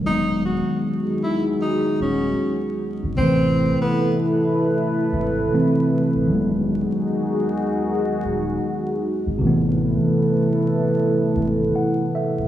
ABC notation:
X:1
M:4/4
L:1/16
Q:"Swing 16ths" 1/4=77
K:E
V:1 name="Analog synth pad"
[D,DFG]16 | [A,EAB]16 | [D,DFG]16 | [A,EAB]16 |]
V:2 name="Tenor saxophone"
D2 F2 z2 E z D2 C3 z3 | =C3 B,2 z8 z3 | z16 | z16 |]
V:3 name="Tine electric piano"
z16 | z16 | z16 | z12 f2 e2 |]
V:4 name="Tine electric piano" clef=bass
[D,F,G,B,]16 | [=C,E,A,B]12 [C,E,A,=C]4 | [D,F,G,B,]16 | [=C,E,A,B,]16 |]
V:5 name="Sub bass" clef=bass
E,,,3 z6 z D,,,2 z3 G,,, | A,,,3 z6 z G,,,2 z3 D,,, | E,,,3 z6 z D,,,2 z3 G,,, | A,,,3 z6 z G,,,2 z3 D,,, |]